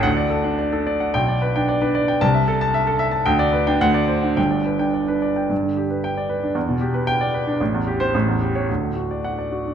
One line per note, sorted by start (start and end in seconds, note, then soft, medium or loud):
0.03 1.11 D2 medium
0.03 0.26 F#5 medium
0.17 0.39 D5 medium
0.30 0.53 A4 medium
0.44 0.67 D4 medium
0.44 0.67 F#5 medium
0.59 0.81 D5 medium
0.73 0.96 D4 medium
0.73 0.95 A4 medium
0.87 1.09 D5 medium
1.00 1.14 F#5 medium
1.14 2.19 B1 medium
1.14 1.36 G5 medium
1.28 1.50 D5 medium
1.42 1.63 B4 medium
1.56 1.77 D4 medium
1.56 1.77 G5 medium
1.69 1.90 D5 medium
1.81 2.03 D4 medium
1.81 2.03 B4 medium
1.95 2.16 D5 medium
2.08 2.22 G5 medium
2.21 3.23 C2 medium
2.21 2.42 A5 medium
2.34 2.55 E5 medium
2.48 2.69 A4 medium
2.61 2.82 A5 medium
2.74 2.95 E5 medium
2.87 3.08 A4 medium
2.99 3.21 E5 medium
3.11 3.25 A5 medium
3.26 3.79 D2 medium
3.26 3.47 G5 medium
3.39 3.61 D5 medium
3.53 3.75 B4 medium
3.67 3.81 D4 medium
3.67 3.81 G5 medium
3.81 4.36 D2 medium
3.81 4.03 F#5 medium
3.94 4.17 D5 medium
4.08 4.31 C5 medium
4.23 4.37 D4 medium
4.23 4.37 F#5 medium
4.36 5.46 G1 medium
4.36 5.47 G2 medium
4.36 4.60 G5 medium
4.51 4.74 D5 medium
4.66 4.88 B4 medium
4.79 5.02 D4 soft
4.79 5.02 G5 medium
4.94 5.17 D5 soft
5.08 5.31 D4 medium
5.08 5.31 B4 medium
5.22 5.45 D5 medium
5.36 5.50 G5 medium
5.50 6.52 G2 medium
5.64 5.85 D3 soft
5.77 5.98 G4 soft
5.90 6.11 B4 soft
6.04 6.25 G5 medium
6.17 6.38 D5 medium
6.29 6.50 B4 medium
6.43 6.56 D4 medium
6.55 7.56 E2 medium
6.69 6.89 B2 medium
6.81 7.02 G4 medium
6.94 7.15 B4 medium
7.07 7.28 G5 medium
7.21 7.42 D5 medium
7.34 7.55 B4 medium
7.47 7.60 D4 medium
7.61 8.12 A1 medium
7.74 7.95 E2 medium
7.87 8.08 G4 medium
8.00 8.14 C5 medium
8.14 8.68 A1 medium
8.29 8.50 E2 medium
8.41 8.63 G4 medium
8.55 8.69 C#5 medium
8.69 9.74 D2 medium
8.83 9.04 A2 soft
8.96 9.18 F#4 soft
9.11 9.32 D5 soft
9.24 9.46 F#5 medium
9.38 9.60 D5 soft
9.52 9.73 F#4 soft
9.66 9.74 D4 soft